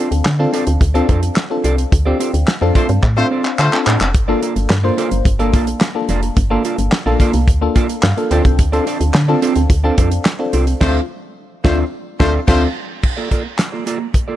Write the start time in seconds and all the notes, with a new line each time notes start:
Already playing: C4 D4 F4 A4
0.00 A4
0.11 D2, muted clean electric guitar stroke, closed hi-hat
0.25 D3, muted clean electric guitar stroke, snare, clap
0.39 C4 D4 F4 A4 D5
0.53 C4 F4 A4 D5, closed hi-hat
0.67 D2, muted clean electric guitar stroke, closed hi-hat
0.81 D2, muted clean electric guitar stroke, kick, closed hi-hat
0.94 C4 D4 F4 A4 D5, closed hi-hat
1.08 F2 C4 F4 A4 D5, kick, closed hi-hat
1.22 muted clean electric guitar stroke, closed hi-hat
1.36 snare, clap
1.50 C4 D4 F4 A4, muted clean electric guitar stroke
1.64 C2 C4 F4 A4 D5, closed hi-hat
1.78 muted clean electric guitar stroke, closed hi-hat
1.92 D2, muted clean electric guitar stroke, kick, closed hi-hat
2.05 C4 D4 F4 G4 A4 D5
2.19 C4 F4 A4 D5, closed hi-hat
2.33 D2, muted clean electric guitar stroke, closed hi-hat
2.47 muted clean electric guitar stroke, snare, clap
2.61 F2 C4 D4 F4 A4 D5
2.75 A3 C4 F4 A4 C5 D5, kick, closed hi-hat
2.89 G2, muted clean electric guitar stroke, closed hi-hat
3.03 A2, muted clean electric guitar stroke, kick, clap
3.17 A3 C4 D4 F4 A4 C5 D5
3.31 C4 F4 A4 D5
3.45 muted clean electric guitar stroke, clap
3.59 D3 A3 F4 C5, clap
3.72 C4 D4 F4 A4, muted clean electric guitar stroke, clap
3.86 A2 C4 F4 A4 D5, clap
4.00 F1, muted clean electric guitar stroke, clap
4.14 G1, muted clean electric guitar stroke, kick, closed hi-hat
4.28 A#3 D4 F4 A4 D5
4.42 A#3 F4 A4 D5, closed hi-hat
4.56 G1, muted clean electric guitar stroke, closed hi-hat
4.70 G2, muted clean electric guitar stroke, snare, clap
4.84 A#3 D4 F4 A4 C5 D5
4.97 A#3 F4 A4 D5, closed hi-hat
5.11 G1, muted clean electric guitar stroke, closed hi-hat
5.25 G1, muted clean electric guitar stroke, kick, closed hi-hat
5.39 A#3 D4 F4 A4 D5, closed hi-hat
5.53 A#1 A#3 F4 A4 D5, kick, closed hi-hat
5.67 muted clean electric guitar stroke, closed hi-hat
5.81 snare, clap
5.95 A#3 D4 F4 A4, muted clean electric guitar stroke
6.09 F1 A#3 F4 A4 D5, closed hi-hat
6.23 muted clean electric guitar stroke, closed hi-hat
6.37 G1, muted clean electric guitar stroke, kick, closed hi-hat
6.50 A#3 D4 F4 A4 D5
6.64 A#3 F4 A4 D5, closed hi-hat
6.78 G1, closed hi-hat
6.92 muted clean electric guitar stroke, snare, clap
7.06 A#1 A#3 D4 F4 A4 D5
7.20 A#3 F4 A4 D5, kick, closed hi-hat
7.33 C2, muted clean electric guitar stroke, closed hi-hat
7.48 D2, kick, closed hi-hat
7.61 A#3 D4 F4 A4, muted clean electric guitar stroke
7.75 A#3 F4 A4 D5, kick, closed hi-hat
7.89 muted clean electric guitar stroke, closed hi-hat
8.03 G2 F5, snare, clap
8.17 A#3 D4 F4 A4, muted clean electric guitar stroke, closed hi-hat
8.31 D2 C4 D4 F4 A4 D5 G5, closed hi-hat
8.45 C2, muted clean electric guitar stroke, kick, closed hi-hat
8.59 D2, muted clean electric guitar stroke, kick, closed hi-hat
8.72 C4 D4 F4 A4 D5, closed hi-hat
8.86 C4 F4 A4 D5, closed hi-hat
9.00 D2, muted clean electric guitar stroke, closed hi-hat
9.14 D3, muted clean electric guitar stroke, snare, clap
9.28 C4 D4 F4 A4 D5
9.42 C4 F4 A4 D5, closed hi-hat
9.56 D2, muted clean electric guitar stroke, closed hi-hat
9.70 D2, muted clean electric guitar stroke, kick, closed hi-hat
9.84 C4 D4 F4 A4 D5
9.98 F2 C4 F4 A4 D5, kick, closed hi-hat
10.12 muted clean electric guitar stroke, closed hi-hat
10.25 snare, clap
10.39 C4 D4 F4 A4, muted clean electric guitar stroke
10.53 C2 C4 F4 A4 D5, closed hi-hat
10.67 muted clean electric guitar stroke, closed hi-hat
10.81 D2 A3 C4 D4 F4 A4 C5 D5, kick, snare, crash
10.88 F4
11.64 D2 A3 C4 D4 F4 A4 C5 D5, kick, snare
12.20 D2 A3 C4 D4 F4 A4 C5 D5, kick, snare
12.47 D2 A3 C4 D4 F4 A4 C5 D5, kick, snare, crash
13.03 muted clean electric guitar stroke, kick, crash
13.17 A#3 F4 A4 D5
13.31 A#3 F4 A4 D5, kick, closed hi-hat
13.45 muted clean electric guitar stroke
13.59 muted clean electric guitar stroke, snare, clap, closed hi-hat
13.72 A#3 F4 A4 D5
13.86 A#3 F4 A4 D5, closed hi-hat
14.00 muted clean electric guitar stroke
14.14 muted clean electric guitar stroke, kick, closed hi-hat
14.28 A#3 F4 A4 D5